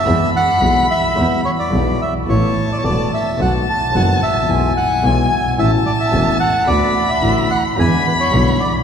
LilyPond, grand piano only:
\new Staff \with { instrumentName = "Grand piano" } { \clef bass \time 4/4 \key e \mixolydian \tempo 4 = 109 <e, e gis b gis'>8 r8 <b,, b, e gis b gis'>8 r8 <e, e gis b gis'>8 r8 <b,, b, e gis b gis'>8 r8 | <a,, a, e a b a'>8 r8 <e,, e, e a b a'>8 r8 <b,, b, dis a b fis'>8 r8 <fis,, fis, dis a b fis'>8 r32 gis,,32 a,,32 bes,,32 | <b,, b, e gis b fis'>8 r8 <b,, b, e gis b fis'>8 r8 <a,, a, e a cis' fis'>8 r8 <e,, e, e a cis' fis'>8 r8 | <d, d a b fis'>8 r8 <a,, a, d a b fis'>8 r8 <e, d e gis b e'>8 r8 <b,, b, d gis b e'>8 r8 | }